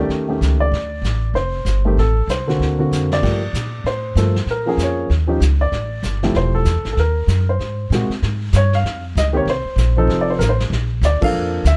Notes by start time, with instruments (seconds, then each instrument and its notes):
Already playing: grand piano D#3 A3 C#4 G4
0.09 upright bass D#2, brush sweep, snare
0.29 grand piano D#3 A3 C#4 G4
0.41 upright bass C#2, snare, hi-hat pedal
0.60 grand piano D5
0.72 upright bass D2, brush sweep, snare
1.02 upright bass A1, snare, hi-hat pedal
1.34 upright bass F1, grand piano C5, brush sweep, snare
1.65 upright bass G1, snare, hi-hat pedal
1.85 grand piano D#3 A3 C4 G4
1.97 upright bass A1, grand piano A4, brush sweep, snare
2.27 upright bass C2, grand piano C5, snare, hi-hat pedal
2.47 grand piano D3 A#3 C4 F#4, snare
2.60 upright bass D2, snare
2.79 grand piano D3 A#3 C4 F#4
2.91 upright bass F2, snare, hi-hat pedal
3.12 grand piano D5, snare
3.22 upright bass G2, grand piano F3 A3 A#3 G4, brush sweep, kick, snare, ride
3.53 upright bass A#2, snare, hi-hat pedal
3.84 upright bass A2, grand piano C5, brush sweep, snare
4.16 upright bass G2, grand piano F3 A3 A#3 A4, snare, hi-hat pedal
4.36 snare
4.46 upright bass A#2, brush sweep, snare
4.51 grand piano A#4
4.66 grand piano F3 A#3 C#4 G#4
4.77 upright bass F2, snare, hi-hat pedal
4.83 grand piano C#5
5.10 upright bass D#2, brush sweep, snare
5.27 grand piano F3 C#4 D#4 G4
5.40 upright bass C#2, snare, hi-hat pedal
5.61 grand piano D5
5.72 upright bass A1, brush sweep, snare
6.03 upright bass G1, snare, hi-hat pedal
6.23 grand piano F3 A3 E4 G4, snare
6.34 upright bass E1, grand piano C5, brush sweep, snare
6.55 grand piano A4
6.65 upright bass E2, snare, hi-hat pedal
6.76 upright bass C2
6.85 upright bass A1, snare
6.93 grand piano A4
6.97 upright bass D#2, grand piano A#4, brush sweep, snare
7.27 upright bass F#2, snare, hi-hat pedal
7.49 grand piano C5
7.59 upright bass G#2, brush sweep, snare
7.90 upright bass A#2, grand piano C3 G#3 A#3, snare, hi-hat pedal
7.94 grand piano F#4
8.09 muted upright bass stroke, snare
8.22 upright bass G#2, brush sweep, snare
8.53 upright bass G2, grand piano C#5, snare, hi-hat pedal
8.73 grand piano F5, snare
8.84 upright bass F2, brush sweep, snare
9.15 upright bass C#2, grand piano D#5, snare, hi-hat pedal
9.33 grand piano D#3 A#3 C4 G4 C#5
9.45 upright bass C2, brush sweep, snare
9.50 grand piano C5
9.65 muted upright bass stroke
9.76 upright bass A#1, snare, hi-hat pedal
9.97 grand piano F3 C4 D#4 A4
10.07 upright bass F1, brush sweep, snare
10.21 grand piano D5
10.30 grand piano C5
10.39 upright bass A1, grand piano A#4, snare, hi-hat pedal
10.49 grand piano C5
10.60 snare
10.70 upright bass A#1, brush sweep, snare
11.02 upright bass D2, grand piano D5, snare, hi-hat pedal
11.21 grand piano F3 A#3 D4 A4 F5, muted upright bass stroke, kick, crash
11.33 upright bass F2, brush sweep
11.65 upright bass D2, grand piano E5, snare, hi-hat pedal